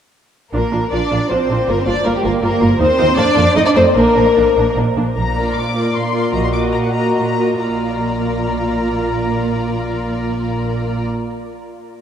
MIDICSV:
0, 0, Header, 1, 6, 480
1, 0, Start_track
1, 0, Key_signature, -2, "major"
1, 0, Tempo, 387097
1, 666, Time_signature, 3, 2, 24, 8
1, 1624, Tempo, 375000
1, 4504, Tempo, 397351
1, 8344, Tempo, 447761
1, 13998, End_track
2, 0, Start_track
2, 0, Title_t, "Violin section"
2, 0, Program_c, 0, 48
2, 661, Note_on_c, 0, 70, 44
2, 1110, Note_off_c, 0, 70, 0
2, 1147, Note_on_c, 0, 74, 47
2, 1618, Note_on_c, 0, 72, 54
2, 1625, Note_off_c, 0, 74, 0
2, 2101, Note_off_c, 0, 72, 0
2, 2106, Note_on_c, 0, 70, 55
2, 2218, Note_on_c, 0, 72, 52
2, 2224, Note_off_c, 0, 70, 0
2, 2340, Note_off_c, 0, 72, 0
2, 2348, Note_on_c, 0, 74, 52
2, 2581, Note_on_c, 0, 70, 53
2, 2584, Note_off_c, 0, 74, 0
2, 2700, Note_off_c, 0, 70, 0
2, 2703, Note_on_c, 0, 67, 51
2, 2818, Note_off_c, 0, 67, 0
2, 2825, Note_on_c, 0, 70, 52
2, 2918, Note_off_c, 0, 70, 0
2, 3065, Note_on_c, 0, 70, 66
2, 3529, Note_off_c, 0, 70, 0
2, 3541, Note_on_c, 0, 72, 75
2, 4010, Note_off_c, 0, 72, 0
2, 4023, Note_on_c, 0, 74, 77
2, 4503, Note_on_c, 0, 75, 79
2, 4508, Note_off_c, 0, 74, 0
2, 4621, Note_off_c, 0, 75, 0
2, 4621, Note_on_c, 0, 74, 65
2, 4743, Note_off_c, 0, 74, 0
2, 4743, Note_on_c, 0, 72, 71
2, 4989, Note_off_c, 0, 72, 0
2, 4995, Note_on_c, 0, 70, 66
2, 5966, Note_off_c, 0, 70, 0
2, 6451, Note_on_c, 0, 82, 60
2, 6888, Note_off_c, 0, 82, 0
2, 6918, Note_on_c, 0, 86, 52
2, 7389, Note_on_c, 0, 84, 56
2, 7390, Note_off_c, 0, 86, 0
2, 7855, Note_on_c, 0, 82, 62
2, 7860, Note_off_c, 0, 84, 0
2, 7974, Note_off_c, 0, 82, 0
2, 7982, Note_on_c, 0, 84, 51
2, 8029, Note_off_c, 0, 84, 0
2, 8093, Note_on_c, 0, 86, 54
2, 8190, Note_off_c, 0, 86, 0
2, 8344, Note_on_c, 0, 82, 52
2, 8388, Note_off_c, 0, 82, 0
2, 8458, Note_on_c, 0, 78, 48
2, 8562, Note_on_c, 0, 82, 50
2, 8567, Note_off_c, 0, 78, 0
2, 8786, Note_off_c, 0, 82, 0
2, 8799, Note_on_c, 0, 82, 51
2, 9267, Note_off_c, 0, 82, 0
2, 9280, Note_on_c, 0, 82, 35
2, 12972, Note_off_c, 0, 82, 0
2, 13998, End_track
3, 0, Start_track
3, 0, Title_t, "Violin section"
3, 0, Program_c, 1, 48
3, 654, Note_on_c, 1, 70, 54
3, 1107, Note_off_c, 1, 70, 0
3, 1130, Note_on_c, 1, 74, 58
3, 1607, Note_off_c, 1, 74, 0
3, 1609, Note_on_c, 1, 72, 57
3, 2096, Note_off_c, 1, 72, 0
3, 2096, Note_on_c, 1, 70, 72
3, 2219, Note_off_c, 1, 70, 0
3, 2233, Note_on_c, 1, 72, 58
3, 2335, Note_on_c, 1, 74, 67
3, 2347, Note_off_c, 1, 72, 0
3, 2573, Note_off_c, 1, 74, 0
3, 2577, Note_on_c, 1, 70, 64
3, 2698, Note_off_c, 1, 70, 0
3, 2702, Note_on_c, 1, 67, 50
3, 2749, Note_off_c, 1, 67, 0
3, 2815, Note_on_c, 1, 70, 72
3, 2910, Note_off_c, 1, 70, 0
3, 3047, Note_on_c, 1, 70, 68
3, 3520, Note_off_c, 1, 70, 0
3, 3527, Note_on_c, 1, 72, 99
3, 3999, Note_on_c, 1, 74, 89
3, 4002, Note_off_c, 1, 72, 0
3, 4490, Note_on_c, 1, 75, 86
3, 4496, Note_off_c, 1, 74, 0
3, 4541, Note_off_c, 1, 75, 0
3, 4615, Note_on_c, 1, 74, 82
3, 4665, Note_off_c, 1, 74, 0
3, 4727, Note_on_c, 1, 72, 75
3, 4824, Note_off_c, 1, 72, 0
3, 4972, Note_on_c, 1, 70, 70
3, 5935, Note_off_c, 1, 70, 0
3, 6678, Note_on_c, 1, 74, 33
3, 6682, Note_on_c, 1, 70, 35
3, 7135, Note_off_c, 1, 70, 0
3, 7136, Note_off_c, 1, 74, 0
3, 7149, Note_on_c, 1, 70, 32
3, 7150, Note_on_c, 1, 74, 35
3, 7606, Note_off_c, 1, 74, 0
3, 7608, Note_off_c, 1, 70, 0
3, 7621, Note_on_c, 1, 74, 36
3, 7622, Note_on_c, 1, 70, 33
3, 7851, Note_off_c, 1, 70, 0
3, 7854, Note_off_c, 1, 74, 0
3, 7861, Note_on_c, 1, 75, 35
3, 7865, Note_on_c, 1, 70, 33
3, 8082, Note_off_c, 1, 70, 0
3, 8084, Note_off_c, 1, 75, 0
3, 8097, Note_on_c, 1, 70, 34
3, 8098, Note_on_c, 1, 75, 34
3, 8547, Note_off_c, 1, 70, 0
3, 8551, Note_off_c, 1, 75, 0
3, 8559, Note_on_c, 1, 70, 35
3, 8564, Note_on_c, 1, 75, 35
3, 9025, Note_off_c, 1, 70, 0
3, 9026, Note_off_c, 1, 75, 0
3, 9038, Note_on_c, 1, 70, 28
3, 9039, Note_on_c, 1, 75, 29
3, 9278, Note_off_c, 1, 70, 0
3, 9283, Note_off_c, 1, 75, 0
3, 9290, Note_on_c, 1, 70, 30
3, 9291, Note_on_c, 1, 74, 27
3, 12978, Note_off_c, 1, 70, 0
3, 12978, Note_off_c, 1, 74, 0
3, 13998, End_track
4, 0, Start_track
4, 0, Title_t, "Viola section"
4, 0, Program_c, 2, 48
4, 663, Note_on_c, 2, 62, 38
4, 664, Note_on_c, 2, 65, 38
4, 760, Note_off_c, 2, 62, 0
4, 760, Note_off_c, 2, 65, 0
4, 890, Note_on_c, 2, 65, 33
4, 892, Note_on_c, 2, 62, 35
4, 990, Note_off_c, 2, 65, 0
4, 991, Note_off_c, 2, 62, 0
4, 1140, Note_on_c, 2, 62, 35
4, 1143, Note_on_c, 2, 65, 35
4, 1238, Note_off_c, 2, 62, 0
4, 1240, Note_off_c, 2, 65, 0
4, 1374, Note_on_c, 2, 65, 35
4, 1378, Note_on_c, 2, 62, 33
4, 1472, Note_off_c, 2, 65, 0
4, 1475, Note_off_c, 2, 62, 0
4, 1620, Note_on_c, 2, 62, 37
4, 1621, Note_on_c, 2, 65, 36
4, 1718, Note_off_c, 2, 62, 0
4, 1718, Note_off_c, 2, 65, 0
4, 1862, Note_on_c, 2, 62, 38
4, 1866, Note_on_c, 2, 65, 37
4, 1958, Note_off_c, 2, 62, 0
4, 1961, Note_off_c, 2, 65, 0
4, 2102, Note_on_c, 2, 65, 50
4, 2103, Note_on_c, 2, 58, 45
4, 2198, Note_off_c, 2, 65, 0
4, 2199, Note_off_c, 2, 58, 0
4, 2331, Note_on_c, 2, 58, 44
4, 2335, Note_on_c, 2, 65, 42
4, 2429, Note_off_c, 2, 58, 0
4, 2432, Note_off_c, 2, 65, 0
4, 2570, Note_on_c, 2, 65, 42
4, 2574, Note_on_c, 2, 58, 43
4, 2667, Note_off_c, 2, 65, 0
4, 2670, Note_off_c, 2, 58, 0
4, 2813, Note_on_c, 2, 58, 45
4, 2813, Note_on_c, 2, 65, 43
4, 2909, Note_off_c, 2, 58, 0
4, 2909, Note_off_c, 2, 65, 0
4, 3042, Note_on_c, 2, 58, 52
4, 3043, Note_on_c, 2, 65, 50
4, 3140, Note_off_c, 2, 58, 0
4, 3141, Note_off_c, 2, 65, 0
4, 3274, Note_on_c, 2, 65, 49
4, 3276, Note_on_c, 2, 58, 47
4, 3374, Note_off_c, 2, 65, 0
4, 3375, Note_off_c, 2, 58, 0
4, 3524, Note_on_c, 2, 63, 62
4, 3528, Note_on_c, 2, 58, 61
4, 3623, Note_off_c, 2, 63, 0
4, 3625, Note_off_c, 2, 58, 0
4, 3769, Note_on_c, 2, 63, 60
4, 3772, Note_on_c, 2, 58, 57
4, 3866, Note_off_c, 2, 63, 0
4, 3869, Note_off_c, 2, 58, 0
4, 4005, Note_on_c, 2, 58, 58
4, 4009, Note_on_c, 2, 62, 54
4, 4104, Note_off_c, 2, 58, 0
4, 4107, Note_off_c, 2, 62, 0
4, 4250, Note_on_c, 2, 58, 51
4, 4250, Note_on_c, 2, 62, 55
4, 4350, Note_off_c, 2, 58, 0
4, 4350, Note_off_c, 2, 62, 0
4, 4495, Note_on_c, 2, 63, 59
4, 4496, Note_on_c, 2, 57, 54
4, 4593, Note_off_c, 2, 57, 0
4, 4593, Note_off_c, 2, 63, 0
4, 4741, Note_on_c, 2, 63, 50
4, 4742, Note_on_c, 2, 57, 49
4, 4837, Note_off_c, 2, 63, 0
4, 4839, Note_off_c, 2, 57, 0
4, 4988, Note_on_c, 2, 62, 58
4, 4990, Note_on_c, 2, 58, 55
4, 5085, Note_off_c, 2, 62, 0
4, 5087, Note_off_c, 2, 58, 0
4, 5223, Note_on_c, 2, 62, 47
4, 5226, Note_on_c, 2, 58, 45
4, 5320, Note_off_c, 2, 62, 0
4, 5323, Note_off_c, 2, 58, 0
4, 5476, Note_on_c, 2, 62, 47
4, 5477, Note_on_c, 2, 58, 49
4, 5573, Note_off_c, 2, 62, 0
4, 5574, Note_off_c, 2, 58, 0
4, 5722, Note_on_c, 2, 58, 45
4, 5725, Note_on_c, 2, 62, 48
4, 5818, Note_off_c, 2, 58, 0
4, 5820, Note_off_c, 2, 62, 0
4, 5965, Note_on_c, 2, 58, 51
4, 5965, Note_on_c, 2, 62, 49
4, 6062, Note_off_c, 2, 58, 0
4, 6062, Note_off_c, 2, 62, 0
4, 6202, Note_on_c, 2, 58, 45
4, 6202, Note_on_c, 2, 62, 44
4, 6298, Note_off_c, 2, 58, 0
4, 6299, Note_off_c, 2, 62, 0
4, 6676, Note_on_c, 2, 58, 41
4, 6682, Note_on_c, 2, 65, 38
4, 7139, Note_off_c, 2, 65, 0
4, 7142, Note_off_c, 2, 58, 0
4, 7153, Note_on_c, 2, 65, 32
4, 7157, Note_on_c, 2, 58, 35
4, 7608, Note_off_c, 2, 58, 0
4, 7610, Note_off_c, 2, 65, 0
4, 7623, Note_on_c, 2, 58, 30
4, 7624, Note_on_c, 2, 65, 35
4, 7850, Note_off_c, 2, 58, 0
4, 7856, Note_off_c, 2, 65, 0
4, 7862, Note_on_c, 2, 66, 37
4, 7864, Note_on_c, 2, 58, 32
4, 8087, Note_off_c, 2, 58, 0
4, 8090, Note_off_c, 2, 66, 0
4, 8102, Note_on_c, 2, 58, 36
4, 8104, Note_on_c, 2, 66, 37
4, 8554, Note_off_c, 2, 66, 0
4, 8557, Note_off_c, 2, 58, 0
4, 8567, Note_on_c, 2, 66, 35
4, 8570, Note_on_c, 2, 58, 34
4, 9029, Note_off_c, 2, 58, 0
4, 9030, Note_off_c, 2, 66, 0
4, 9042, Note_on_c, 2, 58, 27
4, 9043, Note_on_c, 2, 66, 28
4, 9281, Note_off_c, 2, 58, 0
4, 9285, Note_off_c, 2, 66, 0
4, 9291, Note_on_c, 2, 65, 31
4, 9294, Note_on_c, 2, 58, 30
4, 12978, Note_off_c, 2, 65, 0
4, 12980, Note_off_c, 2, 58, 0
4, 13998, End_track
5, 0, Start_track
5, 0, Title_t, "Cello section"
5, 0, Program_c, 3, 48
5, 660, Note_on_c, 3, 58, 42
5, 1110, Note_off_c, 3, 58, 0
5, 1140, Note_on_c, 3, 62, 55
5, 1612, Note_off_c, 3, 62, 0
5, 1615, Note_on_c, 3, 60, 47
5, 2090, Note_off_c, 3, 60, 0
5, 2099, Note_on_c, 3, 58, 49
5, 2221, Note_off_c, 3, 58, 0
5, 2223, Note_on_c, 3, 60, 50
5, 2342, Note_off_c, 3, 60, 0
5, 2342, Note_on_c, 3, 62, 53
5, 2576, Note_off_c, 3, 62, 0
5, 2579, Note_on_c, 3, 58, 55
5, 2695, Note_on_c, 3, 55, 52
5, 2697, Note_off_c, 3, 58, 0
5, 2814, Note_off_c, 3, 55, 0
5, 2815, Note_on_c, 3, 58, 64
5, 3037, Note_off_c, 3, 58, 0
5, 3052, Note_on_c, 3, 58, 63
5, 3523, Note_off_c, 3, 58, 0
5, 3536, Note_on_c, 3, 60, 74
5, 4007, Note_off_c, 3, 60, 0
5, 4018, Note_on_c, 3, 62, 87
5, 4505, Note_off_c, 3, 62, 0
5, 4506, Note_on_c, 3, 63, 78
5, 4553, Note_off_c, 3, 63, 0
5, 4626, Note_on_c, 3, 62, 66
5, 4743, Note_off_c, 3, 62, 0
5, 4744, Note_on_c, 3, 60, 63
5, 4989, Note_off_c, 3, 60, 0
5, 4991, Note_on_c, 3, 58, 62
5, 5945, Note_off_c, 3, 58, 0
5, 6453, Note_on_c, 3, 46, 47
5, 6867, Note_off_c, 3, 46, 0
5, 6923, Note_on_c, 3, 46, 44
5, 7337, Note_off_c, 3, 46, 0
5, 7391, Note_on_c, 3, 46, 42
5, 7806, Note_off_c, 3, 46, 0
5, 7861, Note_on_c, 3, 46, 41
5, 8286, Note_off_c, 3, 46, 0
5, 8346, Note_on_c, 3, 46, 44
5, 8747, Note_off_c, 3, 46, 0
5, 8802, Note_on_c, 3, 46, 41
5, 9233, Note_off_c, 3, 46, 0
5, 9289, Note_on_c, 3, 46, 28
5, 12977, Note_off_c, 3, 46, 0
5, 13998, End_track
6, 0, Start_track
6, 0, Title_t, "Double bass section"
6, 0, Program_c, 4, 48
6, 666, Note_on_c, 4, 34, 39
6, 762, Note_off_c, 4, 34, 0
6, 905, Note_on_c, 4, 34, 38
6, 1001, Note_off_c, 4, 34, 0
6, 1140, Note_on_c, 4, 34, 45
6, 1237, Note_off_c, 4, 34, 0
6, 1384, Note_on_c, 4, 34, 42
6, 1480, Note_off_c, 4, 34, 0
6, 1617, Note_on_c, 4, 34, 41
6, 1715, Note_off_c, 4, 34, 0
6, 1863, Note_on_c, 4, 34, 43
6, 1959, Note_off_c, 4, 34, 0
6, 2099, Note_on_c, 4, 31, 45
6, 2196, Note_off_c, 4, 31, 0
6, 2343, Note_on_c, 4, 31, 48
6, 2438, Note_off_c, 4, 31, 0
6, 2578, Note_on_c, 4, 31, 57
6, 2674, Note_off_c, 4, 31, 0
6, 2816, Note_on_c, 4, 31, 54
6, 2911, Note_off_c, 4, 31, 0
6, 3051, Note_on_c, 4, 31, 58
6, 3147, Note_off_c, 4, 31, 0
6, 3291, Note_on_c, 4, 31, 60
6, 3388, Note_off_c, 4, 31, 0
6, 3526, Note_on_c, 4, 39, 60
6, 3624, Note_off_c, 4, 39, 0
6, 3773, Note_on_c, 4, 39, 63
6, 3870, Note_off_c, 4, 39, 0
6, 4011, Note_on_c, 4, 41, 65
6, 4109, Note_off_c, 4, 41, 0
6, 4255, Note_on_c, 4, 41, 64
6, 4354, Note_off_c, 4, 41, 0
6, 4502, Note_on_c, 4, 41, 61
6, 4598, Note_off_c, 4, 41, 0
6, 4741, Note_on_c, 4, 41, 64
6, 4838, Note_off_c, 4, 41, 0
6, 4988, Note_on_c, 4, 34, 60
6, 5084, Note_off_c, 4, 34, 0
6, 5238, Note_on_c, 4, 34, 50
6, 5334, Note_off_c, 4, 34, 0
6, 5482, Note_on_c, 4, 34, 64
6, 5579, Note_off_c, 4, 34, 0
6, 5724, Note_on_c, 4, 34, 55
6, 5820, Note_off_c, 4, 34, 0
6, 5967, Note_on_c, 4, 34, 57
6, 6063, Note_off_c, 4, 34, 0
6, 6207, Note_on_c, 4, 34, 52
6, 6303, Note_off_c, 4, 34, 0
6, 6450, Note_on_c, 4, 34, 42
6, 6843, Note_off_c, 4, 34, 0
6, 7866, Note_on_c, 4, 34, 41
6, 8267, Note_off_c, 4, 34, 0
6, 9287, Note_on_c, 4, 34, 28
6, 12976, Note_off_c, 4, 34, 0
6, 13998, End_track
0, 0, End_of_file